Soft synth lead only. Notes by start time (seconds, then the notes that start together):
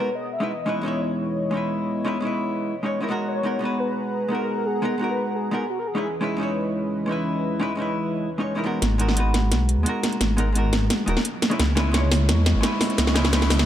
Already playing: B4
0.15 D#5
0.33 E5
0.50 D#5
1.02 C#5
3.28 C#5
3.80 B4
4.32 A#4
4.66 G#4
5.01 F#4
5.10 B4
5.36 G#4
5.70 F#4
5.79 A#4
5.87 G#4